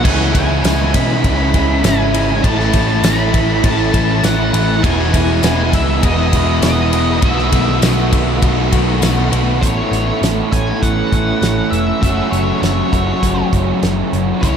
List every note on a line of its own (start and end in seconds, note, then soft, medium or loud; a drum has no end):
0.04 0.33 C#2 medium
0.04 0.94 C#3 loud
0.04 0.63 E3 medium
0.04 0.64 G#3 medium
0.04 0.66 C#4 loud
0.04 0.67 E4 loud
0.04 0.33 G#5 loud
0.04 kick loud
0.04 crash loud
0.21 snare soft
0.34 0.63 C#2 medium
0.34 0.96 G#5 loud
0.34 kick medium
0.34 ride medium
0.64 0.92 C#2 loud
0.64 1.23 E3 medium
0.64 1.24 G#3 medium
0.64 1.25 C#4 medium
0.64 1.27 E4 medium
0.64 snare loud
0.64 ride loud
0.64 tambourine medium
0.94 1.22 B2 medium
0.94 1.87 B5 loud
0.94 kick medium
0.94 snare soft
0.94 ride medium
1.23 1.52 C#2 medium
1.23 1.83 C#3 loud
1.23 1.83 E3 medium
1.23 1.56 G#3 medium
1.23 1.54 C#4 medium
1.23 kick loud
1.23 ride loud
1.27 1.54 E4 medium
1.54 1.82 C#2 medium
1.54 1.84 G#3 medium
1.54 1.85 C#4 medium
1.54 1.87 E4 medium
1.54 kick medium
1.54 ride medium
1.84 2.40 G#1 medium
1.84 2.43 E3 medium
1.84 2.15 G#3 medium
1.84 2.14 C#4 medium
1.84 2.13 E4 medium
1.84 2.44 G#5 loud
1.84 snare loud
1.84 ride medium
1.84 tambourine loud
2.13 2.43 G#3 medium
2.13 2.42 C#4 medium
2.13 2.45 E4 medium
2.13 ride medium
2.43 2.72 A1 loud
2.43 3.33 A2 medium
2.43 3.03 E3 medium
2.43 3.03 A3 loud
2.43 3.04 C#4 loud
2.43 3.06 E4 loud
2.43 3.06 A5 loud
2.43 kick loud
2.43 ride loud
2.60 snare soft
2.73 3.02 A1 medium
2.73 kick medium
2.73 ride medium
3.03 3.31 A1 loud
3.03 3.63 E3 medium
3.03 3.64 A3 medium
3.03 3.65 C#4 medium
3.03 3.66 E4 medium
3.03 3.66 B5 loud
3.03 snare loud
3.03 ride loud
3.03 tambourine loud
3.34 3.62 A1 medium
3.34 kick loud
3.34 ride medium
3.63 3.92 A1 medium
3.63 4.23 A2 loud
3.63 4.23 E3 medium
3.63 3.95 A3 medium
3.63 3.94 C#4 medium
3.63 3.92 E4 medium
3.63 4.25 A5 loud
3.63 kick loud
3.63 ride loud
3.93 4.22 A1 medium
3.93 4.23 A3 medium
3.93 4.24 C#4 medium
3.93 4.26 E4 medium
3.93 kick medium
3.93 ride medium
4.23 4.52 A1 medium
4.23 4.84 E3 medium
4.23 4.55 A3 medium
4.23 4.54 C#4 medium
4.23 4.52 E4 medium
4.23 4.83 F#5 medium
4.23 snare loud
4.23 ride medium
4.23 tambourine loud
4.53 4.81 A1 medium
4.53 4.83 A3 medium
4.53 4.82 C#4 medium
4.53 4.86 E4 medium
4.53 ride medium
4.83 5.12 E1 loud
4.83 5.73 E2 loud
4.83 5.73 B2 medium
4.83 5.43 E3 medium
4.83 5.43 G#3 loud
4.83 5.45 B3 loud
4.83 5.46 E4 loud
4.83 5.14 G#5 loud
4.83 kick loud
4.83 ride loud
5.14 5.42 E1 medium
5.14 5.76 G#5 loud
5.14 kick loud
5.14 ride medium
5.43 5.71 E1 loud
5.43 6.02 E3 medium
5.43 6.02 G#3 medium
5.43 6.03 B3 medium
5.43 6.05 E4 medium
5.43 snare loud
5.43 ride loud
5.43 tambourine loud
5.73 6.01 C#2 medium
5.73 6.04 E5 medium
5.73 kick medium
5.73 snare soft
5.73 ride medium
6.02 6.31 E1 medium
6.02 6.62 E2 loud
6.02 6.63 B2 loud
6.02 6.34 E3 medium
6.02 6.33 G#3 medium
6.02 6.32 B3 medium
6.02 6.31 E4 medium
6.02 6.62 D#5 loud
6.02 kick loud
6.02 ride loud
6.32 6.61 E1 medium
6.32 6.61 E3 medium
6.32 6.62 G#3 medium
6.32 6.63 B3 medium
6.32 6.65 E4 medium
6.32 kick medium
6.32 ride medium
6.62 7.18 E1 medium
6.62 6.95 E3 medium
6.62 6.93 G#3 medium
6.62 6.92 B3 medium
6.62 6.92 E4 medium
6.62 7.22 D#5 loud
6.62 snare loud
6.62 ride loud
6.62 tambourine medium
6.92 7.23 E3 medium
6.92 7.21 G#3 medium
6.92 7.21 B3 medium
6.92 7.25 E4 medium
6.92 ride medium
7.22 7.51 B1 medium
7.22 8.12 B2 medium
7.22 7.80 D#3 medium
7.22 9.60 F#3 loud
7.22 7.82 A3 loud
7.22 7.82 B3 loud
7.22 7.84 F#4 loud
7.22 7.78 E5 medium
7.22 kick loud
7.22 ride loud
7.38 snare soft
7.52 7.80 B1 loud
7.52 kick medium
7.52 ride medium
7.82 8.10 B1 loud
7.82 8.41 D#3 medium
7.82 8.42 A3 medium
7.82 8.43 B3 medium
7.82 8.44 F#4 medium
7.82 snare loud
7.82 ride medium
7.82 tambourine loud
8.13 8.41 B1 medium
8.13 kick medium
8.13 ride medium
8.42 8.70 B1 medium
8.42 9.02 B2 loud
8.42 9.00 D#3 medium
8.42 8.73 A3 medium
8.42 8.72 B3 medium
8.42 8.70 F#4 medium
8.42 kick loud
8.42 ride loud
8.71 9.01 B1 medium
8.71 9.01 A3 medium
8.71 9.02 B3 medium
8.71 9.03 F#4 medium
8.71 kick medium
8.71 ride medium
9.01 9.30 B1 medium
9.01 9.60 D#3 medium
9.01 9.34 A3 medium
9.01 9.32 B3 medium
9.01 9.30 F#4 medium
9.01 snare loud
9.01 ride medium
9.01 tambourine medium
9.31 9.60 B1 medium
9.31 9.62 A3 medium
9.31 9.61 B3 medium
9.31 9.60 F#4 medium
9.31 ride medium
9.61 9.80 A1 medium
9.61 12.00 A2 medium
9.61 12.02 E3 medium
9.61 12.01 A3 medium
9.61 12.03 C#4 medium
9.61 10.51 E4 loud
9.61 12.02 A4 medium
9.61 10.18 C#5 loud
9.61 kick loud
9.61 closed hi-hat medium
9.91 10.10 A1 medium
9.91 closed hi-hat medium
10.22 10.40 A1 medium
10.22 snare loud
10.22 closed hi-hat medium
10.51 10.70 A1 medium
10.51 12.01 A2 medium
10.51 12.02 E3 medium
10.51 12.00 A3 medium
10.51 12.03 C#4 medium
10.51 12.03 E4 medium
10.51 10.82 G#5 medium
10.51 kick medium
10.51 closed hi-hat medium
10.83 11.01 A1 medium
10.83 11.75 F#5 medium
10.83 kick medium
10.83 closed hi-hat medium
11.12 11.31 A1 medium
11.12 kick medium
11.12 closed hi-hat medium
11.42 11.60 A1 medium
11.42 snare loud
11.42 closed hi-hat medium
11.71 11.90 F1 medium
11.71 12.01 E5 medium
11.71 closed hi-hat medium
12.01 12.21 F#1 medium
12.01 14.40 F#2 medium
12.01 14.40 C#3 medium
12.01 14.41 F#3 medium
12.01 14.41 A3 medium
12.01 14.41 C#4 medium
12.01 14.41 F#4 loud
12.01 12.30 E5 medium
12.01 kick loud
12.01 closed hi-hat medium
12.31 12.50 F#1 medium
12.31 12.61 C#5 medium
12.31 closed hi-hat medium
12.62 12.80 F#1 medium
12.62 13.48 C#5 medium
12.62 snare loud
12.62 closed hi-hat medium
12.92 13.11 F#1 medium
12.92 14.41 F#2 medium
12.92 14.41 C#3 medium
12.92 14.41 F#3 medium
12.92 14.41 A3 medium
12.92 14.41 C#4 medium
12.92 14.40 F#4 medium
12.92 kick medium
12.92 closed hi-hat medium
13.22 13.40 F#1 medium
13.22 kick medium
13.22 closed hi-hat medium
13.53 13.71 F#1 medium
13.53 kick medium
13.53 closed hi-hat medium
13.83 14.01 F#1 medium
13.83 snare medium
13.83 closed hi-hat medium
14.13 14.31 F#1 medium
14.13 closed hi-hat medium
14.41 14.57 C#2 medium
14.41 14.57 C#3 medium
14.41 14.57 E3 medium
14.41 14.57 G#3 medium
14.41 14.57 C#4 medium
14.41 14.57 E4 medium
14.41 14.57 C#5 loud
14.41 kick loud
14.41 closed hi-hat medium